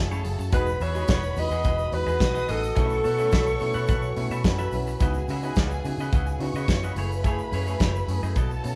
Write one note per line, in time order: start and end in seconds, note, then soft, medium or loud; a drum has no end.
0.00 0.50 C#3 medium
0.00 2.72 F#3 medium
0.00 0.50 A3 medium
0.00 0.50 E4 medium
0.00 0.49 F#4 medium
0.00 0.10 G#4 medium
0.00 0.51 A4 medium
0.00 0.51 A5 medium
0.11 0.21 F#2 loud
0.11 0.24 F#3 medium
0.11 0.24 A3 medium
0.11 0.24 E4 medium
0.11 0.24 G#4 medium
0.11 0.24 C#5 medium
0.11 shaker medium
0.24 0.36 F#1 medium
0.24 0.37 E4 medium
0.24 0.38 G#4 medium
0.24 muted clean electric guitar stroke soft
0.24 open hi-hat medium
0.24 shaker medium
0.38 0.49 F#2 medium
0.38 muted clean electric guitar stroke medium
0.38 shaker medium
0.52 0.74 E1 loud
0.52 2.75 E3 medium
0.52 0.65 G#3 medium
0.52 0.65 B3 loud
0.52 6.93 B3 medium
0.52 2.75 D#4 medium
0.52 0.66 D#4 medium
0.52 8.75 F#4 medium
0.52 0.66 F#4 medium
0.52 0.66 F#4 loud
0.52 0.66 G#4 loud
0.52 2.17 B4 medium
0.52 0.84 B4 loud
0.52 0.66 D#5 medium
0.52 2.17 B5 loud
0.52 kick loud
0.52 closed hi-hat medium
0.52 shaker medium
0.67 shaker medium
0.80 1.02 E2 loud
0.80 0.94 E3 medium
0.80 0.91 B3 medium
0.80 0.91 F#4 medium
0.80 0.91 G#4 medium
0.80 1.09 C#5 loud
0.80 0.91 E5 medium
0.80 open hi-hat medium
0.80 shaker soft
0.95 1.08 G#3 medium
0.95 1.05 B3 medium
0.95 1.08 D#4 medium
0.95 1.05 F#4 medium
0.95 1.08 F#4 medium
0.95 1.05 G#4 medium
0.95 1.05 D#5 medium
0.95 shaker medium
1.08 1.31 E1 loud
1.08 1.22 E3 medium
1.08 1.21 B3 medium
1.08 1.22 F#4 loud
1.08 1.22 G#4 medium
1.08 1.41 C#5 loud
1.08 1.22 D#5 medium
1.08 kick loud
1.08 snare loud
1.08 closed hi-hat medium
1.08 shaker medium
1.23 muted clean electric guitar stroke soft
1.23 shaker medium
1.36 1.48 E2 loud
1.36 1.50 G#3 medium
1.36 1.50 D#4 medium
1.36 1.50 F#4 medium
1.36 1.95 D#5 loud
1.36 muted clean electric guitar stroke soft
1.36 open hi-hat medium
1.36 shaker medium
1.50 1.66 E2 medium
1.50 1.62 B3 medium
1.50 1.56 D#4 soft
1.50 1.57 F#4 soft
1.50 1.62 F#4 medium
1.50 1.61 G#4 medium
1.50 1.61 D#5 medium
1.50 shaker medium
1.64 1.87 E1 loud
1.64 1.78 E3 medium
1.64 1.77 B3 medium
1.64 1.78 F#4 medium
1.64 1.78 G#4 loud
1.64 1.78 D#5 loud
1.64 kick loud
1.64 closed hi-hat medium
1.64 shaker medium
1.78 muted clean electric guitar stroke soft
1.78 shaker soft
1.92 2.03 E2 loud
1.92 2.06 G#3 medium
1.92 2.06 D#4 medium
1.92 2.06 F#4 medium
1.92 2.52 B4 loud
1.92 muted clean electric guitar stroke soft
1.92 open hi-hat medium
2.07 2.18 E2 medium
2.07 2.17 B3 medium
2.07 2.13 D#4 soft
2.07 2.17 F#4 medium
2.07 2.13 F#4 soft
2.07 2.17 G#4 medium
2.07 2.17 D#5 medium
2.07 shaker medium
2.20 2.42 B1 medium
2.20 2.34 D#4 medium
2.20 2.34 F#4 medium
2.20 2.76 D#5 medium
2.20 2.76 D#6 loud
2.20 kick loud
2.20 snare loud
2.20 closed hi-hat soft
2.20 shaker medium
2.34 2.48 E3 medium
2.34 2.45 B3 medium
2.34 2.45 F#4 medium
2.34 2.45 G#4 medium
2.34 2.44 D#5 medium
2.34 shaker medium
2.48 2.71 A1 loud
2.48 2.61 B3 medium
2.48 2.62 D#4 medium
2.48 2.61 F#4 medium
2.48 2.62 F#4 medium
2.48 2.61 G#4 loud
2.48 4.74 A4 loud
2.48 2.61 D#5 loud
2.48 open hi-hat medium
2.48 shaker medium
2.63 shaker medium
2.75 2.99 B1 loud
2.75 6.92 E3 medium
2.75 4.99 F#3 medium
2.75 4.98 A3 medium
2.75 2.90 A3 medium
2.75 2.90 C#4 medium
2.75 2.96 E4 medium
2.75 2.90 E4 loud
2.75 2.96 A4 medium
2.75 2.96 B4 loud
2.75 4.41 C#5 medium
2.75 2.96 E5 medium
2.75 4.41 C#6 loud
2.75 kick loud
2.75 closed hi-hat medium
2.75 shaker medium
2.90 shaker medium
3.04 3.18 B2 medium
3.04 3.27 B2 loud
3.04 3.18 F#3 medium
3.04 3.14 E4 medium
3.04 3.15 A4 medium
3.04 3.15 B4 medium
3.04 3.15 E5 medium
3.04 open hi-hat medium
3.04 shaker medium
3.18 3.32 A3 medium
3.18 3.32 C#4 medium
3.18 3.29 E4 medium
3.18 3.32 E4 medium
3.18 3.29 A4 medium
3.18 3.29 B4 medium
3.18 3.28 E5 medium
3.18 shaker medium
3.31 3.55 B1 loud
3.31 3.46 B2 medium
3.31 3.46 F#3 medium
3.31 3.45 E4 medium
3.31 3.46 A4 loud
3.31 3.46 B4 loud
3.31 3.45 E5 loud
3.31 kick loud
3.31 snare loud
3.31 closed hi-hat medium
3.31 shaker medium
3.47 muted clean electric guitar stroke soft
3.47 shaker medium
3.59 3.72 B2 loud
3.59 3.74 A3 medium
3.59 3.74 C#4 medium
3.59 3.74 E4 medium
3.59 muted clean electric guitar stroke soft
3.59 open hi-hat medium
3.59 shaker medium
3.73 3.90 B2 loud
3.73 3.81 C#4 soft
3.73 3.81 E4 soft
3.73 3.85 E4 medium
3.73 3.85 A4 medium
3.73 3.85 B4 medium
3.73 3.85 F#5 medium
3.73 shaker medium
3.87 4.11 B1 loud
3.87 4.02 B2 medium
3.87 4.02 F#3 medium
3.87 4.01 E4 loud
3.87 4.02 A4 medium
3.87 4.02 B4 loud
3.87 4.02 F#5 loud
3.87 kick loud
3.87 closed hi-hat medium
3.87 shaker medium
4.02 muted clean electric guitar stroke soft
4.02 shaker soft
4.16 4.28 B2 medium
4.16 4.29 A3 medium
4.16 4.29 C#4 medium
4.16 4.29 E4 medium
4.16 muted clean electric guitar stroke soft
4.16 open hi-hat medium
4.30 4.41 B2 medium
4.30 4.36 C#4 soft
4.30 4.36 E4 soft
4.30 4.42 E4 medium
4.30 4.42 A4 medium
4.30 4.41 B4 medium
4.30 4.41 E5 medium
4.30 shaker medium
4.44 4.66 F#2 medium
4.44 4.58 C#4 medium
4.44 4.58 E4 medium
4.44 4.99 B4 medium
4.44 4.99 B5 medium
4.44 muted clean electric guitar stroke soft
4.44 kick loud
4.44 snare loud
4.44 closed hi-hat soft
4.44 shaker medium
4.58 4.72 B2 medium
4.58 4.72 F#3 medium
4.58 4.72 E4 medium
4.58 4.72 A4 medium
4.58 4.72 B4 medium
4.58 4.71 E5 medium
4.58 shaker medium
4.72 4.94 B1 medium
4.72 4.86 C#4 medium
4.72 4.86 E4 medium
4.72 muted clean electric guitar stroke soft
4.72 open hi-hat medium
4.72 shaker medium
4.87 muted clean electric guitar stroke soft
4.87 shaker medium
5.00 5.22 C#2 loud
5.00 8.75 C#3 medium
5.00 5.13 B3 medium
5.00 5.13 D#4 medium
5.00 6.95 D#4 medium
5.00 5.14 E4 medium
5.00 5.14 F#4 loud
5.00 5.14 F#4 medium
5.00 6.38 G#4 medium
5.00 5.14 B4 medium
5.00 5.15 D#5 medium
5.00 6.38 G#5 medium
5.00 kick loud
5.00 closed hi-hat medium
5.00 shaker medium
5.14 shaker medium
5.28 5.50 C#3 loud
5.28 5.42 C#3 medium
5.28 5.42 G#3 medium
5.28 5.39 E4 medium
5.28 5.40 F#4 medium
5.28 5.40 B4 medium
5.28 5.40 E5 medium
5.28 open hi-hat medium
5.28 shaker soft
5.43 5.56 B3 medium
5.43 5.56 D#4 medium
5.43 5.56 E4 medium
5.43 5.54 E4 medium
5.43 5.56 F#4 medium
5.43 5.54 F#4 medium
5.43 5.54 B4 medium
5.43 5.53 D#5 medium
5.43 shaker medium
5.55 5.78 C#2 loud
5.55 5.70 C#3 medium
5.55 5.70 G#3 medium
5.55 5.77 E4 medium
5.55 5.72 F#4 loud
5.55 5.72 B4 medium
5.55 5.71 D#5 loud
5.55 kick loud
5.55 snare loud
5.55 closed hi-hat medium
5.55 shaker medium
5.71 muted clean electric guitar stroke medium
5.71 shaker medium
5.84 5.95 C#3 loud
5.84 5.98 B3 medium
5.84 5.98 D#4 medium
5.84 5.97 E4 medium
5.84 5.97 F#4 medium
5.84 muted clean electric guitar stroke soft
5.84 open hi-hat medium
5.84 shaker medium
5.98 6.09 C#3 loud
5.98 6.04 E4 soft
5.98 6.10 E4 medium
5.98 6.04 F#4 soft
5.98 6.10 F#4 medium
5.98 6.10 B4 medium
5.98 6.10 D#5 medium
5.98 shaker medium
6.13 6.34 C#2 loud
6.13 6.26 C#3 medium
6.13 6.26 G#3 medium
6.13 6.26 E4 medium
6.13 6.26 F#4 medium
6.13 6.26 B4 loud
6.13 6.27 D#5 medium
6.13 kick loud
6.13 closed hi-hat medium
6.13 shaker medium
6.27 muted clean electric guitar stroke medium
6.27 shaker medium
6.40 6.51 C#3 loud
6.40 6.54 B3 medium
6.40 6.53 D#4 medium
6.40 6.52 E4 medium
6.40 6.53 F#4 medium
6.40 6.95 C#5 medium
6.40 6.96 C#6 medium
6.40 muted clean electric guitar stroke soft
6.40 open hi-hat medium
6.54 6.65 C#3 loud
6.54 6.60 E4 soft
6.54 6.66 E4 medium
6.54 6.60 F#4 soft
6.54 6.66 F#4 medium
6.54 6.66 B4 medium
6.54 6.65 D#5 medium
6.54 shaker medium
6.67 6.90 F#2 medium
6.67 6.81 E4 medium
6.67 6.81 F#4 medium
6.67 kick loud
6.67 snare loud
6.67 closed hi-hat medium
6.67 shaker medium
6.81 6.95 C#3 medium
6.81 6.95 G#3 medium
6.81 6.94 E4 medium
6.81 6.94 F#4 medium
6.81 6.93 B4 medium
6.81 6.93 D#5 medium
6.81 shaker medium
6.95 7.40 F#1 loud
6.95 8.35 G#3 medium
6.95 8.75 A3 medium
6.95 7.10 A3 medium
6.95 7.09 E4 medium
6.95 8.35 E4 medium
6.95 7.10 E4 medium
6.95 7.09 G#4 medium
6.95 7.10 G#4 medium
6.95 8.33 B4 medium
6.95 7.10 C#5 loud
6.95 8.33 B5 medium
6.95 open hi-hat medium
6.95 shaker medium
7.12 muted clean electric guitar stroke medium
7.12 shaker medium
7.23 7.37 A3 medium
7.23 7.38 A3 medium
7.23 7.37 E4 medium
7.23 7.38 E4 medium
7.23 7.37 G#4 loud
7.23 7.38 G#4 medium
7.23 7.38 C#5 medium
7.23 kick loud
7.23 closed hi-hat medium
7.23 shaker medium
7.39 shaker medium
7.52 7.74 F#2 loud
7.52 7.65 F#3 medium
7.52 7.63 A3 medium
7.52 7.63 E4 medium
7.52 7.63 G#4 medium
7.52 7.63 C#5 medium
7.52 open hi-hat medium
7.52 shaker soft
7.66 7.79 A3 medium
7.66 7.78 A3 medium
7.66 7.79 E4 medium
7.66 7.77 E4 medium
7.66 7.79 G#4 medium
7.66 7.77 G#4 medium
7.66 7.77 C#5 medium
7.66 shaker medium
7.80 8.02 F#1 loud
7.80 7.93 F#3 medium
7.80 7.94 A3 medium
7.80 7.94 E4 medium
7.80 7.94 G#4 medium
7.80 7.94 C#5 medium
7.80 kick loud
7.80 snare loud
7.80 closed hi-hat medium
7.80 shaker medium
7.95 muted clean electric guitar stroke soft
7.95 shaker medium
8.08 8.19 F#2 loud
8.08 8.21 A3 medium
8.08 8.21 E4 medium
8.08 8.21 G#4 medium
8.08 muted clean electric guitar stroke soft
8.08 open hi-hat medium
8.08 shaker medium
8.22 8.33 F#2 loud
8.22 8.33 A3 medium
8.22 8.28 E4 soft
8.22 8.33 E4 medium
8.22 8.28 G#4 soft
8.22 8.33 G#4 medium
8.22 8.33 D#5 medium
8.22 shaker medium
8.35 8.58 B1 loud
8.35 8.49 B2 medium
8.35 8.49 F#3 medium
8.35 8.75 B3 medium
8.35 8.49 B3 medium
8.35 8.75 E4 medium
8.35 8.49 E4 medium
8.35 8.75 A4 medium
8.35 8.50 A4 medium
8.35 8.50 D#5 medium
8.35 8.75 A5 loud
8.35 kick loud
8.35 closed hi-hat medium
8.35 shaker medium
8.51 muted clean electric guitar stroke medium
8.51 shaker soft
8.63 8.75 B2 medium
8.63 8.75 C#4 medium
8.63 8.75 E4 medium
8.63 8.75 A4 medium
8.63 muted clean electric guitar stroke soft
8.63 open hi-hat medium
8.63 shaker medium